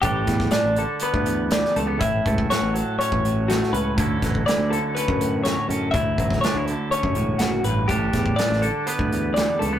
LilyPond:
<<
  \new Staff \with { instrumentName = "Clean electric guitar" } { \time 4/4 \key d \major \tempo 4 = 122 g'4 d''8 a'8 b'4 d''8 a'8 | e''4 cis''8 a'8 cis''4 fis'8 b'8 | a'4 d''8 a'8 b'4 cis''8 a'8 | e''4 cis''8 a'8 cis''4 fis'8 b'8 |
g'4 d''8 a'8 b'4 d''8 a'8 | }
  \new Staff \with { instrumentName = "Clean electric guitar" } { \clef bass \time 4/4 \key d \major << { d'8 g8 d'4 b4 g8 a16 b16 | e'8 a8 fis'4 cis'4 a8 cis'8 | <d fis cis' e'>8 fis8 e'4 cis'4 fis8 cis'8 | e'8 fis8 d'16 e'8. cis'2 |
d'8 g8 d'4 b4 g8 a16 b16 | } \\ { a,4. d4 e,4. | a,4. fis4 a,4. | d,4. d4 a,4. | d,4. d4 a,8 fis,8 g,8 |
a,4. d4 e,4. | } >> }
  \new Staff \with { instrumentName = "Fingered electric bass" } { \clef bass \time 4/4 \key d \major a,,8 e,8 r16 a,,8 r8 d,4~ d,16 cis,8 | a,,8 cis,8 r16 a,,8 r8 a,,4~ a,,16 cis,8 | d,8 a,,8 r16 d,8 r8 fis,4~ fis,16 fis,8 | d,8 a,,8 r16 d,8 r8 fis,16 e,,8 fis,,8 a,,8 |
a,,8 e,8 r16 a,,8 r8 d,4~ d,16 cis,8 | }
  \new DrumStaff \with { instrumentName = "Drums" } \drummode { \time 4/4 <hh bd>8 <hh bd sn>16 <bd sn>16 <hh sn>8 hh8 hh16 bd16 hh8 <hh sn>16 sn16 hh8 | <hh bd>8 <hh bd>16 bd16 <hh sn>8 hh8 hh16 bd16 hh8 <hh sn>16 sn16 hh8 | <hh bd>8 <hh bd sn>16 bd16 <hh sn>8 hh8 hh16 bd16 hh8 <hh sn>8 hh8 | <hh bd>8 <hh bd>16 <bd sn>16 <hh sn>8 hh8 hh16 bd16 hh8 <hh sn>8 hh8 |
<hh bd>8 <hh bd sn>16 bd16 <hh sn>16 sn16 hh8 hh16 bd16 hh8 <hh sn>8 hh8 | }
>>